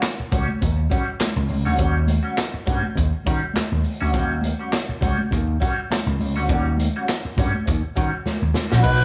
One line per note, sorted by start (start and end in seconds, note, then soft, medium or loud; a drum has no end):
0.02 muted clean electric guitar stroke soft
0.02 snare loud
0.02 clap loud
0.02 closed hi-hat loud
0.19 muted clean electric guitar stroke medium
0.19 muted slap bass stroke soft
0.32 0.46 C#2 loud
0.32 0.50 G3 medium
0.32 0.47 C#4 medium
0.32 0.47 F#4 medium
0.32 kick loud
0.32 closed hi-hat medium
0.32 muted conga soft
0.32 low conga medium
0.48 muted clean electric guitar stroke soft
0.48 high conga medium
0.60 0.86 D#2 medium
0.60 muted clean electric guitar stroke soft
0.60 kick medium
0.60 closed hi-hat medium
0.60 low conga medium
0.77 muted clean electric guitar stroke soft
0.90 1.09 G3 medium
0.90 1.06 C#4 medium
0.90 1.05 F#4 medium
0.90 kick loud
0.90 closed hi-hat medium
0.90 muted conga soft
1.06 muted clean electric guitar stroke soft
1.20 muted clean electric guitar stroke soft
1.20 snare loud
1.20 clap medium
1.20 closed hi-hat medium
1.20 high conga medium
1.36 1.47 C#2 medium
1.36 muted clean electric guitar stroke soft
1.48 1.63 C#2 medium
1.48 open hi-hat medium
1.48 high conga medium
1.65 1.77 D2 medium
1.65 1.77 G3 medium
1.65 1.77 C#4 medium
1.65 1.78 F#4 medium
1.78 2.17 D#2 loud
1.78 1.97 G3 medium
1.78 1.97 C#4 medium
1.78 1.97 F#4 medium
1.78 kick loud
1.78 closed hi-hat medium
1.78 muted conga soft
2.07 muted clean electric guitar stroke soft
2.07 closed hi-hat medium
2.07 muted conga soft
2.07 high conga medium
2.23 2.35 G3 medium
2.23 2.36 C#4 medium
2.23 2.35 F#4 medium
2.37 muted clean electric guitar stroke soft
2.37 snare loud
2.37 clap medium
2.37 closed hi-hat medium
2.37 muted conga soft
2.53 muted clean electric guitar stroke soft
2.53 muted slap bass stroke soft
2.66 2.81 G2 medium
2.66 2.85 G3 medium
2.66 2.82 C#4 medium
2.66 2.82 F#4 medium
2.66 kick loud
2.66 closed hi-hat medium
2.66 muted conga soft
2.66 low conga medium
2.83 muted clean electric guitar stroke soft
2.83 high conga medium
2.95 3.11 D#2 medium
2.95 muted clean electric guitar stroke soft
2.95 kick medium
2.95 closed hi-hat medium
2.95 muted conga soft
2.95 low conga medium
3.13 muted clean electric guitar stroke soft
3.25 3.40 D#3 loud
3.25 3.44 G3 medium
3.25 3.41 C#4 medium
3.25 3.40 F#4 medium
3.25 kick loud
3.25 closed hi-hat medium
3.25 muted conga soft
3.42 muted clean electric guitar stroke soft
3.54 muted clean electric guitar stroke soft
3.54 muted slap bass stroke soft
3.54 snare medium
3.54 clap medium
3.54 closed hi-hat medium
3.54 high conga medium
3.70 3.83 D#2 medium
3.70 muted clean electric guitar stroke soft
3.83 open hi-hat medium
3.83 high conga medium
4.00 4.14 D2 medium
4.00 4.12 G3 medium
4.00 4.13 C#4 medium
4.00 4.14 F#4 medium
4.13 4.52 D#2 loud
4.13 4.32 G3 loud
4.13 4.32 C#4 medium
4.13 4.33 F#4 medium
4.13 kick loud
4.13 closed hi-hat medium
4.13 muted conga soft
4.41 muted clean electric guitar stroke soft
4.41 closed hi-hat medium
4.41 muted conga soft
4.41 high conga medium
4.59 4.71 G3 medium
4.59 4.72 C#4 medium
4.59 4.71 F#4 medium
4.72 muted clean electric guitar stroke soft
4.72 snare loud
4.72 clap medium
4.72 closed hi-hat medium
4.72 muted conga soft
4.89 muted clean electric guitar stroke soft
4.89 muted slap bass stroke soft
5.01 5.16 C#2 medium
5.01 5.20 G3 medium
5.01 5.18 C#4 medium
5.01 5.17 F#4 loud
5.01 kick loud
5.01 closed hi-hat medium
5.01 low conga medium
5.18 muted clean electric guitar stroke soft
5.18 high conga medium
5.31 5.56 D#2 medium
5.31 muted clean electric guitar stroke soft
5.31 kick medium
5.31 closed hi-hat medium
5.31 muted conga soft
5.31 low conga medium
5.48 muted clean electric guitar stroke soft
5.60 5.79 G3 medium
5.60 5.76 C#4 medium
5.60 5.75 F#4 loud
5.60 kick loud
5.60 closed hi-hat medium
5.77 muted clean electric guitar stroke soft
5.90 muted clean electric guitar stroke soft
5.90 snare loud
5.90 clap medium
5.90 closed hi-hat medium
5.90 muted conga soft
5.90 high conga medium
6.06 6.17 C#2 medium
6.06 muted clean electric guitar stroke medium
6.19 6.36 C#2 medium
6.19 open hi-hat medium
6.19 muted conga soft
6.19 high conga medium
6.36 6.47 D2 medium
6.36 6.49 G3 medium
6.36 6.50 C#4 medium
6.36 6.50 F#4 medium
6.49 6.87 D#2 medium
6.49 6.68 G3 medium
6.49 6.68 C#4 medium
6.49 6.69 F#4 loud
6.49 kick loud
6.49 closed hi-hat medium
6.77 muted clean electric guitar stroke soft
6.77 closed hi-hat medium
6.77 high conga medium
6.96 7.07 G3 medium
6.96 7.07 C#4 medium
6.96 7.07 F#4 medium
7.08 muted clean electric guitar stroke soft
7.08 snare loud
7.08 clap medium
7.08 closed hi-hat medium
7.25 muted slap bass stroke soft
7.25 muted clean electric guitar stroke soft
7.37 7.51 G2 medium
7.37 7.56 G3 medium
7.37 7.53 C#4 medium
7.37 7.52 F#4 medium
7.37 kick loud
7.37 closed hi-hat medium
7.37 muted conga soft
7.37 low conga medium
7.53 muted clean electric guitar stroke soft
7.53 high conga medium
7.66 7.81 D#2 medium
7.66 muted clean electric guitar stroke soft
7.66 kick medium
7.66 closed hi-hat medium
7.66 muted conga soft
7.66 low conga medium
7.83 muted clean electric guitar stroke soft
7.95 8.10 D#3 loud
7.95 8.14 G3 medium
7.95 8.12 C#4 medium
7.95 8.11 F#4 loud
7.95 kick medium
7.95 closed hi-hat medium
8.12 muted clean electric guitar stroke soft
8.26 muted slap bass stroke soft
8.26 muted clean electric guitar stroke soft
8.26 snare medium
8.26 muted conga soft
8.26 high conga medium
8.41 8.53 D#2 medium
8.41 muted clean electric guitar stroke medium
8.54 snare medium
8.54 high conga medium
8.54 low conga medium
8.71 8.83 A#1 medium
8.71 8.83 G3 medium
8.71 8.83 C#4 medium
8.71 8.84 F#4 medium
8.71 snare medium
8.83 9.05 B1 medium
8.83 9.02 A#3 medium
8.83 9.02 D#4 loud
8.83 9.03 F#4 medium
8.83 9.05 B4 medium
8.83 kick loud
8.83 crash loud
8.83 muted conga soft